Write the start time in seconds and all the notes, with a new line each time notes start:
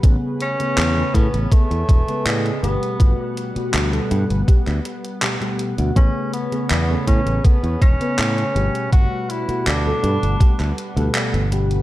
Already playing: B3 B4
0.03 A1 C#3 A3 B3 G#4 C#5, kick, closed hi-hat
0.40 C#4, closed hi-hat
0.59 C#3 A3 B3 G#4, closed hi-hat
0.77 E2, clap, closed hi-hat
0.96 C#3 A3 B3 B4
1.14 A2 B3, kick, closed hi-hat
1.34 A1, closed hi-hat
1.51 C#3 A3 B3 A4, muted fingered electric bass stroke, kick, closed hi-hat
1.71 E2, closed hi-hat
1.89 E1, kick, closed hi-hat
2.07 C#3 G#3 B3 B4, muted fingered electric bass stroke, closed hi-hat
2.25 A2 G#3, clap, closed hi-hat
2.46 closed hi-hat
2.63 G1 B2 G3 A3 B3 G4 F#5, closed hi-hat
2.83 closed hi-hat
2.99 G1 B2 G3 A3 F#4, kick, closed hi-hat
3.37 closed hi-hat
3.55 B2 G3 A3 F#4, muted fingered electric bass stroke, closed hi-hat
3.74 D2, clap, closed hi-hat
3.92 B2 G3 A3 A4, closed hi-hat
4.11 G2, closed hi-hat
4.30 G1, closed hi-hat
4.47 B2 G3 A3 G4, kick, closed hi-hat
4.67 D2, clap, closed hi-hat
4.85 closed hi-hat
5.04 closed hi-hat
5.22 B2 G3 A3 G4, clap, closed hi-hat
5.40 B2 G3 A3 G4, closed hi-hat
5.59 closed hi-hat
5.78 D2 B2 G3 A3 F#4, closed hi-hat
5.95 A1 C#3 A3 B3 C#4 G#4 B4 C#5, kick, closed hi-hat
6.33 B3, closed hi-hat
6.51 C#3 A3 B3 G#4, closed hi-hat
6.70 E2 B3, clap, closed hi-hat
6.89 C#3 A3 B3 B4
7.07 A2 C#4, kick, closed hi-hat
7.26 A1, closed hi-hat
7.44 C#3 A3 B3 A4, muted fingered electric bass stroke, kick, closed hi-hat
7.63 E2, closed hi-hat
7.82 E1 C#4, kick, closed hi-hat
8.00 C#3 A3 B3 B4, muted fingered electric bass stroke, closed hi-hat
8.18 A2, clap, closed hi-hat
8.38 closed hi-hat
8.55 G1 B2 G3 A3 G4 F#5, closed hi-hat
8.75 closed hi-hat
8.91 G1 B2 G3 A3 F#4, kick, closed hi-hat
9.30 E4, closed hi-hat
9.48 B2 G3 A3 F#4, muted fingered electric bass stroke, closed hi-hat
9.67 D2 D4, clap, closed hi-hat
9.85 B2 G3 A3 A4
10.03 G2, closed hi-hat
10.23 G1, closed hi-hat
10.39 B2 G3 A3 G4, kick, closed hi-hat
10.60 D2, clap, closed hi-hat
10.78 closed hi-hat
10.96 D2 B2 G3 A3 A4, closed hi-hat
11.15 clap, closed hi-hat
11.34 G1, closed hi-hat
11.51 B2 G3 A3 G4, closed hi-hat
11.71 closed hi-hat